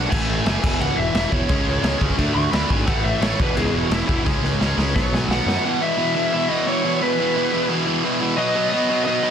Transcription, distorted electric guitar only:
Already playing: D4
0.10 A2 E3 A3
0.45 A2 E3 A3
0.62 E2 B2 E3
0.80 E2 B2 E3
1.15 E2 B2 E3
1.32 E2 B2 E3
1.50 C#3 G#3 C#4
1.83 C#3 G#3 C#4
2.01 C#3 G#3 C#4
2.18 D3 A3 D4
2.52 D3 A3 D4
2.69 D3 A3 D4
2.86 A2 E3 A3
3.21 A2 E3 A3
3.38 E2 B2 E3
3.55 E2 B2 E3
3.90 E2 B2 E3
4.07 E2 B2 E3
4.24 C#3 G#3 C#4
4.61 C#3 G#3 C#4
4.77 C#3 G#3 C#4
4.96 B2 F#3 B3
5.31 B2 F#3 B3
5.47 B2 F#3 B3
5.64 E2 B2 E3
5.81 E2 B2 E3
5.98 E2 B2 E3
6.16 E2 B2 E3
6.32 E2 B2 E3
6.50 E2 B2 E3
6.67 E2 B2 E3
6.84 E2 B2 E3
7.02 E2 B2 E3
7.19 E2 B2 E3
7.37 E2 B2 E3
7.52 E2 B2 E3
7.69 E2 B2 E3
7.86 E2 B2 E3
8.04 E2 B2 E3
8.21 E2 B2 E3
8.37 B2 F#3 B3
8.55 B2 F#3 B3
8.73 B2 F#3 B3
8.89 B2 F#3 B3
9.06 B2 F#3 B3
9.23 B2 F#3 B3

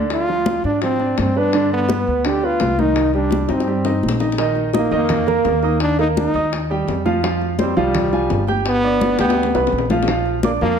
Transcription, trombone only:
0.12 F4
0.66 D4
0.83 C4
1.21 C4
1.38 D4
1.73 B3
2.27 G4
2.45 F4
2.80 D#4
3.15 D4
3.52 C4
4.77 A#3
4.96 A#3
5.82 D4
6.00 D#4
6.18 D#4
7.60 G3
7.78 G3
8.67 B3
9.20 B3
10.44 A#3
10.61 A#3

